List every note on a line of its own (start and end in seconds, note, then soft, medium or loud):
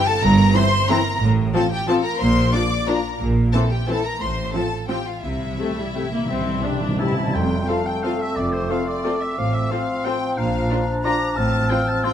0.06 0.22 A4 loud
0.06 0.22 A5 loud
0.22 0.49 G1 loud
0.22 0.49 G2 loud
0.22 0.55 A#4 loud
0.22 0.54 A#5 loud
0.54 0.63 E3 medium
0.54 0.67 C4 medium
0.54 0.63 C4 medium
0.54 0.67 E4 medium
0.54 0.88 C5 loud
0.54 0.88 C6 loud
0.89 0.97 E3 medium
0.89 0.97 C4 medium
0.89 1.01 C4 medium
0.89 1.01 E4 medium
0.89 1.22 A#4 loud
0.89 1.21 A#5 loud
1.21 1.49 A1 loud
1.21 1.48 A2 loud
1.54 1.62 F3 medium
1.54 1.66 C4 medium
1.54 1.62 C4 medium
1.54 1.66 F4 medium
1.54 1.70 A4 medium
1.54 1.70 A5 loud
1.71 1.88 G4 medium
1.71 1.88 G5 loud
1.88 1.96 F3 medium
1.88 1.96 C4 medium
1.88 2.00 C4 medium
1.88 2.00 F4 medium
1.88 2.05 A4 loud
1.88 1.94 A5 loud
2.04 2.20 A#4 loud
2.04 2.20 A#5 loud
2.20 2.48 A#1 loud
2.20 2.48 A#2 loud
2.20 2.53 C5 loud
2.20 2.53 C6 loud
2.53 2.61 F3 medium
2.53 2.61 D4 medium
2.53 2.66 D4 medium
2.53 2.66 F4 medium
2.53 2.87 D5 loud
2.53 2.88 D6 loud
2.87 2.95 F3 medium
2.87 2.99 D4 medium
2.87 2.95 D4 medium
2.87 2.99 F4 medium
2.87 3.20 A#4 medium
2.87 3.20 A#5 loud
3.20 3.48 A#1 medium
3.20 3.48 A#2 medium
3.53 3.61 E3 medium
3.53 3.66 C4 medium
3.53 3.62 C4 medium
3.53 3.66 E4 medium
3.53 3.70 A4 medium
3.53 3.60 A5 loud
3.70 3.88 G4 medium
3.70 3.88 G5 medium
3.88 3.96 E3 medium
3.88 3.96 C4 medium
3.88 4.00 C4 medium
3.88 4.00 E4 medium
3.88 4.04 A4 medium
3.88 4.05 A5 loud
4.04 4.20 A#4 medium
4.04 4.20 A#5 loud
4.20 4.48 A1 medium
4.20 4.48 A2 medium
4.20 4.53 C5 medium
4.20 4.53 C6 medium
4.53 4.62 F3 medium
4.53 4.66 C4 medium
4.53 4.62 C4 medium
4.53 4.66 F4 medium
4.53 4.89 A4 medium
4.53 4.88 A5 medium
4.88 4.97 F3 medium
4.88 5.01 C4 medium
4.88 4.97 C4 medium
4.88 5.01 F4 medium
4.88 5.06 G4 medium
4.88 5.06 G5 medium
5.05 5.23 F4 medium
5.05 5.23 F5 medium
5.22 5.53 C2 medium
5.22 5.53 C3 medium
5.22 5.30 C3 soft
5.22 7.18 E4 medium
5.22 6.97 E5 medium
5.38 5.45 C3 soft
5.46 5.53 C3 soft
5.54 5.61 C3 soft
5.54 5.71 C4 soft
5.54 5.71 G4 medium
5.58 5.69 C3 soft
5.58 5.76 A3 medium
5.71 5.78 C3 soft
5.77 5.86 C3 soft
5.77 5.95 G3 medium
5.87 5.94 C3 soft
5.94 6.02 C3 soft
5.94 6.02 A3 medium
5.94 6.07 C4 medium
5.94 6.07 G4 medium
6.03 6.09 C3 soft
6.10 6.17 C3 medium
6.10 6.29 A#3 medium
6.18 6.24 C3 medium
6.26 6.58 C2 medium
6.26 6.32 C3 medium
6.26 6.64 C4 medium
6.30 6.59 C3 medium
6.30 6.39 C3 medium
6.40 6.47 C3 medium
6.48 6.55 C3 medium
6.56 6.63 C3 medium
6.63 6.71 C3 medium
6.63 6.77 C4 medium
6.63 7.00 D4 medium
6.63 6.77 G4 medium
6.72 6.79 C3 medium
6.80 6.87 C3 medium
6.88 6.95 C3 medium
6.96 7.03 C3 medium
6.96 7.34 E4 medium
6.96 7.35 A5 medium
6.96 7.32 A5 medium
7.01 7.11 C3 medium
7.01 7.13 C4 medium
7.01 7.13 G4 medium
7.12 7.19 C3 loud
7.20 7.26 C3 medium
7.27 7.34 C3 loud
7.34 7.63 F1 medium
7.34 7.63 F2 medium
7.34 7.83 F2 medium
7.34 9.34 A3 medium
7.34 9.34 C4 medium
7.34 7.67 G5 medium
7.34 7.69 G5 medium
7.34 7.70 C6 medium
7.68 7.76 C4 soft
7.68 7.81 C4 medium
7.68 7.76 F4 medium
7.68 7.81 A4 medium
7.68 7.77 A4 soft
7.68 7.77 C5 medium
7.68 7.88 F5 medium
7.68 7.86 F5 medium
7.68 8.38 A5 medium
7.86 8.04 G5 medium
7.86 8.05 G5 medium
8.03 8.11 C4 medium
8.03 8.16 C4 medium
8.03 8.11 F4 medium
8.03 8.12 A4 medium
8.03 8.16 A4 medium
8.03 8.11 C5 medium
8.03 8.23 F5 medium
8.03 8.20 F5 medium
8.21 8.37 E5 medium
8.36 8.64 F1 medium
8.36 8.64 F2 medium
8.36 8.54 D5 medium
8.36 8.53 D5 medium
8.36 8.72 D6 medium
8.52 8.69 C5 medium
8.52 8.70 C5 medium
8.69 8.82 C4 medium
8.69 8.78 C4 soft
8.69 8.78 F4 medium
8.69 8.82 A4 medium
8.69 8.78 A4 soft
8.69 8.78 C5 soft
8.69 8.87 F5 medium
8.69 8.88 F5 medium
8.69 9.06 C6 medium
8.88 9.21 D5 medium
8.88 9.24 D5 medium
9.04 9.16 C4 medium
9.04 9.13 C4 medium
9.04 9.13 F4 medium
9.04 9.12 A4 medium
9.04 9.17 A4 medium
9.04 9.12 C5 medium
9.04 9.73 D6 medium
9.22 9.38 E5 medium
9.22 9.40 E5 medium
9.37 9.65 A1 medium
9.37 9.65 A2 medium
9.37 11.33 F3 medium
9.37 10.39 C4 medium
9.37 9.54 F5 medium
9.37 9.53 F5 medium
9.54 9.72 E5 medium
9.54 9.71 E5 medium
9.70 9.83 C4 medium
9.70 9.79 C4 medium
9.70 9.83 F4 medium
9.70 9.79 F4 medium
9.70 9.79 A4 medium
9.70 9.79 C5 medium
9.70 10.07 F5 medium
9.70 10.05 F5 medium
9.70 10.37 C6 medium
10.05 10.13 C4 medium
10.05 10.17 C4 medium
10.05 10.13 F4 medium
10.05 10.17 F4 medium
10.05 10.13 A4 medium
10.05 10.13 C5 medium
10.05 10.37 G5 medium
10.05 10.40 G5 medium
10.37 10.65 A#1 medium
10.37 10.65 A#2 medium
10.37 11.39 D4 medium
10.37 10.87 F5 medium
10.37 10.88 F5 medium
10.37 11.06 A#5 medium
10.70 10.78 D4 medium
10.70 10.83 D4 medium
10.70 10.78 F4 medium
10.70 10.83 F4 medium
10.70 10.78 A#4 medium
11.05 11.13 D4 medium
11.05 11.17 D4 medium
11.05 11.16 F4 medium
11.05 11.13 F4 medium
11.05 11.13 A#4 medium
11.05 11.35 A#5 loud
11.05 11.40 A#5 medium
11.05 11.38 D6 medium
11.36 11.64 A1 medium
11.36 11.65 A2 medium
11.36 12.13 F3 medium
11.36 12.13 C4 medium
11.36 11.70 A5 loud
11.36 11.72 A5 medium
11.36 12.06 F6 medium
11.70 11.78 C4 medium
11.70 11.83 C4 medium
11.70 11.78 F4 medium
11.70 11.83 F4 medium
11.70 11.79 F4 medium
11.70 11.78 C5 medium
11.70 11.88 G5 medium
11.88 12.05 A5 loud
11.88 12.06 A5 medium
12.04 12.13 C4 medium
12.04 12.13 F4 medium
12.04 12.13 C5 medium
12.04 12.13 G5 medium
12.04 12.13 C6 medium